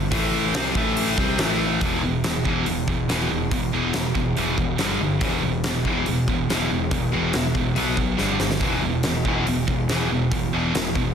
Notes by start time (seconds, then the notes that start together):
Already playing: G1
0.11 A1 A2 E3 A3, kick, open hi-hat
0.54 C2 C3 G3 C4, snare, open hi-hat
0.75 A1 A2 E3 A3, kick
0.97 open hi-hat
1.18 C2 C3 G3 C4, kick
1.38 A1 A2 E3 A3, snare, open hi-hat
1.81 E1 E2 B2 E3, kick, open hi-hat
2.03 E1 E2 B2
2.24 E1 E2 B2, snare, open hi-hat
2.45 E1 E2 B2 E3, kick
2.66 E1 E2 B2, open hi-hat
2.87 E1 E2 B2, kick
3.09 E1 E2 B2 E3, snare, open hi-hat
3.30 E1 E2 B2
3.51 E1 E2 B2, kick, open hi-hat
3.73 E1 E2 B2 E3
3.94 E1 E2 B2, snare, open hi-hat
4.15 E1 E2 B2, kick
4.37 E1 E2 B2 E3, open hi-hat
4.58 E1 E2 B2, kick
4.78 G1 G2 D3 G3, snare, open hi-hat
5.01 G1 G2 D3
5.21 E1 E2 B2 E3, kick, open hi-hat
5.43 E1 E2 B2
5.64 E1 E2 B2, snare, open hi-hat
5.85 E1 E2 B2 E3, kick
6.06 E1 E2 B2, open hi-hat
6.28 E1 E2 B2, kick
6.49 E1 E2 B2 E3, snare, open hi-hat
6.70 E1 E2 B2
6.91 E1 E2 B2, kick, open hi-hat
7.11 E1 E2 B2 E3
7.32 E1 E2 B2, snare, open hi-hat
7.54 E1 E2 B2, kick
7.75 B1 B2 F#3 B3, open hi-hat
7.97 B1 B2 F#3, kick
8.17 G1 G2 D3 G3, snare
8.39 G1 G2 D3, snare
8.51 snare
8.61 E1 E2 B2 E3, kick, open hi-hat
8.82 E1 E2 B2
9.03 E1 E2 B2, snare, open hi-hat
9.25 E1 E2 B2 E3, kick
9.47 E1 E2 B2, open hi-hat
9.68 E1 E2 B2, kick
9.88 E1 E2 B2 E3, snare, open hi-hat
10.10 E1 E2 B2
10.32 E1 E2 B2, kick, open hi-hat
10.53 E1 E2 B2 E3
10.73 E1 E2 B2, snare, open hi-hat
10.95 E1 E2 B2, kick